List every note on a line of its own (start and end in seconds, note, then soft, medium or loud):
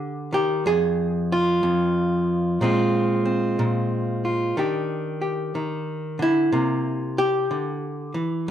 0.00 0.32 D3 medium
0.00 0.61 A#3 medium
0.00 0.62 D4 soft
0.00 0.32 G4 medium
0.33 0.65 D#3 medium
0.33 0.66 G4 medium
0.66 1.62 F2 medium
0.66 1.30 G#4 loud
1.32 2.62 F4 medium
1.63 2.60 F2 medium
2.61 3.58 A#2 medium
2.61 4.57 G#3 medium
2.61 3.24 C4 medium
2.61 4.24 F4 medium
3.25 4.56 C4 medium
3.59 4.52 A#2 medium
4.25 4.57 F4 medium
4.57 5.54 D#3 medium
4.57 6.19 D4 medium
4.57 5.20 G4 soft
5.21 6.48 G4 soft
5.55 6.19 D#3 medium
6.19 6.52 D3 medium
6.19 8.16 E4 medium
6.52 7.50 C3 medium
6.52 8.44 A#3 soft
7.18 8.48 G4 medium
7.51 8.15 D3 medium
8.14 8.47 E3 medium